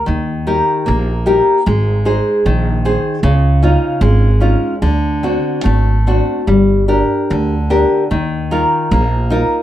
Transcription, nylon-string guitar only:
\new Staff \with { instrumentName = "Nylon-string guitar" } { \time 2/4 \key ees \major \tempo 4 = 75 ees8 <ees' g' bes'>8 bes8 <ees' g' bes'>8 | aes8 <ees' aes' c''>8 ees8 <ees' aes' c''>8 | des8 <des' ees' f'>8 aes8 <des' ees' f'>8 | d8 <c' d' fis'>8 a8 <c' d' fis'>8 |
g8 <d' g' bes'>8 d8 <d' g' bes'>8 | ees8 <ees' f' bes'>8 bes8 <ees' f' bes'>8 | }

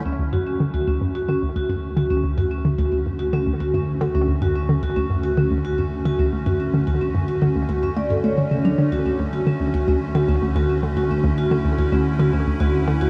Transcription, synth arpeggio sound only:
\new Staff \with { instrumentName = "Synth arpeggio sound" } { \clef bass \time 4/4 \key d \major \tempo 4 = 110 d,16 d,16 fis,16 r16 d16 d,16 d,16 fis,16 r16 d16 d,16 d,16 fis,16 r16 d16 d,16 | d,16 fis,16 r16 d16 d,16 d,16 fis,16 r16 d16 d,16 d,16 fis,16 r16 d16 d,16 d,16 | fis,16 r16 d16 d,16 d,16 fis,16 r16 d16 d,16 d,16 fis,16 r16 d16 d,16 d,16 fis,16 | r16 d16 d,16 d,16 fis,16 r16 d16 d,16 d,16 fis,16 a16 g,16 a16 d16 cis16 fis16 |
d16 d,16 d,16 d,16 r16 d16 d,16 d,16 d,16 r16 d16 d,16 d,16 d,16 r16 d16 | d,16 d,16 d,16 r16 d16 d,16 d,16 d,16 r16 d16 d,16 d,16 d,16 r16 d16 d,16 | }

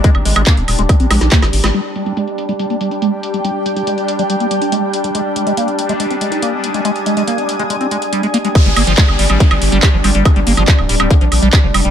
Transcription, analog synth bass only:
\new Staff \with { instrumentName = "Analog synth bass" } { \clef bass \time 4/4 \key g \phrygian \tempo 4 = 141 r16 aes,,16 aes,,16 aes,,16 r16 ees,,16 ees,,16 ees,,16 r16 bes,,16 bes,,16 bes,,16 r16 aes,,16 aes,,16 aes,,16 | r1 | r1 | r1 |
r1 | r16 g,,16 g,,16 g,,16 r16 g,,16 g,,16 aes,,16 r16 g,,16 g,,16 g,,16 r16 g,,16 g,,16 g,,16 | r16 g,,16 g,,16 g,,16 r16 d,,16 d,,16 d,,16 r16 bes,,16 bes,,16 bes,,16 r16 f,,16 f,,16 f,,16 | }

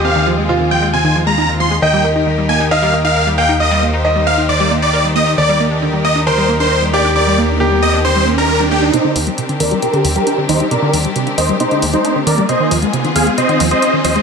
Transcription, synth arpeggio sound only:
\new Staff \with { instrumentName = "Synth arpeggio sound" } { \clef bass \time 4/4 \key c \minor \tempo 4 = 135 c16 ees16 f16 aes16 c16 ees16 f16 aes16 c16 ees16 f16 aes16 ees'16 ees16 f16 aes16 | ees16 g16 bes16 ees'16 ees16 g16 bes16 ees'16 ees16 g16 bes16 ees'16 bes'16 g16 bes16 ees'16 | ees16 g16 bes16 ees'16 ees16 g16 bes16 ees'16 ees16 g16 bes16 ees'16 bes'16 g16 bes16 ees'16 | d16 g16 bes16 d'16 d16 g16 bes16 d'16 d16 g16 bes16 d'16 bes'16 g16 bes16 d'16 |
d16 g16 bes16 d'16 d16 g16 bes16 d'16 d16 g16 bes16 d'16 bes'16 g16 bes16 d'16 | c16 d16 ees16 g16 c16 d16 ees16 g16 c16 d16 ees16 g16 d'16 d16 ees16 g16 | c16 d16 ees16 g16 c16 d16 ees16 g16 c16 d16 ees16 g16 d'16 d16 ees16 g16 | c16 ees16 f16 aes16 c16 ees16 f16 aes16 c16 ees16 f16 aes16 ees'16 ees16 f16 aes16 | }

